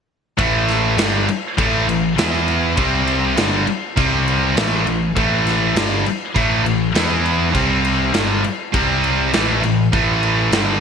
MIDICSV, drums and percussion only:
0, 0, Header, 1, 2, 480
1, 0, Start_track
1, 0, Key_signature, 0, "minor"
1, 0, Tempo, 596421
1, 308, Time_signature, 4, 2, 24, 8
1, 8693, End_track
2, 0, Start_track
2, 0, Title_t, "Drums"
2, 311, Note_on_c, 9, 36, 102
2, 312, Note_on_c, 9, 49, 82
2, 392, Note_off_c, 9, 36, 0
2, 392, Note_off_c, 9, 49, 0
2, 551, Note_on_c, 9, 49, 64
2, 557, Note_on_c, 9, 38, 34
2, 631, Note_off_c, 9, 49, 0
2, 638, Note_off_c, 9, 38, 0
2, 791, Note_on_c, 9, 49, 90
2, 797, Note_on_c, 9, 38, 111
2, 871, Note_off_c, 9, 49, 0
2, 878, Note_off_c, 9, 38, 0
2, 1034, Note_on_c, 9, 49, 64
2, 1115, Note_off_c, 9, 49, 0
2, 1275, Note_on_c, 9, 36, 110
2, 1278, Note_on_c, 9, 49, 84
2, 1355, Note_off_c, 9, 36, 0
2, 1358, Note_off_c, 9, 49, 0
2, 1520, Note_on_c, 9, 49, 63
2, 1601, Note_off_c, 9, 49, 0
2, 1756, Note_on_c, 9, 49, 82
2, 1762, Note_on_c, 9, 38, 114
2, 1836, Note_off_c, 9, 49, 0
2, 1843, Note_off_c, 9, 38, 0
2, 1995, Note_on_c, 9, 49, 60
2, 2075, Note_off_c, 9, 49, 0
2, 2231, Note_on_c, 9, 49, 89
2, 2235, Note_on_c, 9, 36, 103
2, 2311, Note_off_c, 9, 49, 0
2, 2315, Note_off_c, 9, 36, 0
2, 2474, Note_on_c, 9, 49, 62
2, 2554, Note_off_c, 9, 49, 0
2, 2715, Note_on_c, 9, 49, 89
2, 2721, Note_on_c, 9, 38, 118
2, 2795, Note_off_c, 9, 49, 0
2, 2802, Note_off_c, 9, 38, 0
2, 2955, Note_on_c, 9, 49, 59
2, 3035, Note_off_c, 9, 49, 0
2, 3198, Note_on_c, 9, 36, 107
2, 3199, Note_on_c, 9, 49, 80
2, 3279, Note_off_c, 9, 36, 0
2, 3279, Note_off_c, 9, 49, 0
2, 3442, Note_on_c, 9, 49, 61
2, 3523, Note_off_c, 9, 49, 0
2, 3678, Note_on_c, 9, 49, 79
2, 3685, Note_on_c, 9, 38, 116
2, 3759, Note_off_c, 9, 49, 0
2, 3765, Note_off_c, 9, 38, 0
2, 3918, Note_on_c, 9, 49, 63
2, 3999, Note_off_c, 9, 49, 0
2, 4158, Note_on_c, 9, 36, 100
2, 4158, Note_on_c, 9, 49, 71
2, 4238, Note_off_c, 9, 36, 0
2, 4238, Note_off_c, 9, 49, 0
2, 4399, Note_on_c, 9, 49, 60
2, 4405, Note_on_c, 9, 38, 34
2, 4479, Note_off_c, 9, 49, 0
2, 4486, Note_off_c, 9, 38, 0
2, 4638, Note_on_c, 9, 49, 86
2, 4645, Note_on_c, 9, 38, 121
2, 4719, Note_off_c, 9, 49, 0
2, 4725, Note_off_c, 9, 38, 0
2, 4879, Note_on_c, 9, 49, 59
2, 4960, Note_off_c, 9, 49, 0
2, 5117, Note_on_c, 9, 36, 99
2, 5119, Note_on_c, 9, 49, 84
2, 5198, Note_off_c, 9, 36, 0
2, 5199, Note_off_c, 9, 49, 0
2, 5361, Note_on_c, 9, 49, 61
2, 5442, Note_off_c, 9, 49, 0
2, 5596, Note_on_c, 9, 49, 89
2, 5603, Note_on_c, 9, 38, 105
2, 5677, Note_off_c, 9, 49, 0
2, 5683, Note_off_c, 9, 38, 0
2, 5839, Note_on_c, 9, 49, 66
2, 5919, Note_off_c, 9, 49, 0
2, 6074, Note_on_c, 9, 36, 101
2, 6075, Note_on_c, 9, 49, 82
2, 6155, Note_off_c, 9, 36, 0
2, 6156, Note_off_c, 9, 49, 0
2, 6314, Note_on_c, 9, 49, 65
2, 6395, Note_off_c, 9, 49, 0
2, 6551, Note_on_c, 9, 49, 82
2, 6557, Note_on_c, 9, 38, 112
2, 6631, Note_off_c, 9, 49, 0
2, 6638, Note_off_c, 9, 38, 0
2, 6795, Note_on_c, 9, 49, 59
2, 6875, Note_off_c, 9, 49, 0
2, 7034, Note_on_c, 9, 36, 114
2, 7034, Note_on_c, 9, 49, 84
2, 7114, Note_off_c, 9, 36, 0
2, 7115, Note_off_c, 9, 49, 0
2, 7273, Note_on_c, 9, 49, 54
2, 7354, Note_off_c, 9, 49, 0
2, 7512, Note_on_c, 9, 49, 80
2, 7519, Note_on_c, 9, 38, 106
2, 7593, Note_off_c, 9, 49, 0
2, 7599, Note_off_c, 9, 38, 0
2, 7754, Note_on_c, 9, 49, 62
2, 7834, Note_off_c, 9, 49, 0
2, 7992, Note_on_c, 9, 49, 74
2, 7993, Note_on_c, 9, 36, 107
2, 8072, Note_off_c, 9, 49, 0
2, 8073, Note_off_c, 9, 36, 0
2, 8232, Note_on_c, 9, 49, 55
2, 8312, Note_off_c, 9, 49, 0
2, 8470, Note_on_c, 9, 49, 85
2, 8476, Note_on_c, 9, 38, 111
2, 8551, Note_off_c, 9, 49, 0
2, 8557, Note_off_c, 9, 38, 0
2, 8693, End_track
0, 0, End_of_file